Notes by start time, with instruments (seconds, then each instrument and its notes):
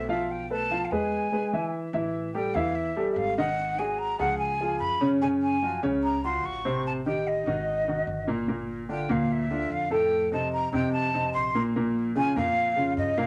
Already playing: upright bass B1
0.09 grand piano F3 F4 F5, flute E5
0.31 flute G5
0.50 grand piano A3 A4 B4, flute A5
0.70 grand piano F3 F4 F5
0.85 flute F5
0.91 upright bass E2, grand piano G#3 G#4 B4, flute G#5
1.32 grand piano G#3 G#4 B4
1.53 grand piano E3 E4 E5
1.93 upright bass A1, grand piano E3 E4 E5
2.34 grand piano G3 G4 A4, flute G5
2.54 upright bass E2, grand piano E3 E4 E5, flute F5
2.75 flute E5
2.96 grand piano G3 G4 A4
3.12 flute E5
3.16 upright bass G#1, flute F5
3.38 grand piano D#3 D#4 D#5, flute F#5
3.78 grand piano F#3 F#4 G#4, flute G#5
3.99 flute A#5
4.19 upright bass C#2, grand piano F3 F4 G#4, flute F#5
4.38 flute G#5
4.60 grand piano F3 F4 G#4
4.79 upright bass F#2, flute B5
5.01 grand piano C#3 C#4 C#5
5.21 grand piano C#3 C#4 C#5, flute G#5
5.42 flute G#5
5.62 grand piano F3 F4 F#4
5.83 upright bass C#2, grand piano C#3 C#4 C#5
6.03 flute A#5
6.24 grand piano F#3 F4 F#4, flute C6
6.44 upright bass A1, flute C#6
6.65 grand piano C3 C4 C5
6.87 flute A5
7.06 grand piano D#3 D#4 G4, flute G5
7.27 flute D#5
7.46 upright bass G#1, grand piano D#3 D#4 F#4
7.88 grand piano D#3 D#4 F#4
8.07 upright bass G1
8.27 grand piano A#2 A#3 A#4
8.48 grand piano A#2 A#3 A#4
8.89 grand piano D3 D4 F4, flute G5
9.09 upright bass D2, grand piano A#2 A#3 A#4, flute F5
9.32 flute E5
9.50 grand piano D3 D4 F4
9.70 upright bass F2, flute F5
9.90 grand piano A2 A3 A4, flute G5
10.32 grand piano C3 C4 D#4, flute A5
10.53 flute A#5
10.73 upright bass F2, grand piano C3 C4 D#4, flute G5
10.93 flute A5
11.14 grand piano C3 C4 D#4
11.34 upright bass A#1, flute C6
11.55 grand piano A#2 A#3 A#4
11.76 grand piano A#2 A#3 A#4
12.15 grand piano C#3 C#4 F4, flute G#5
12.36 upright bass F2, grand piano A#2 A#3 A#4, flute F5
12.76 grand piano C#3 C#4 F4
12.97 upright bass G2, flute D#5
13.18 grand piano A#2 A#3 A#4, flute F5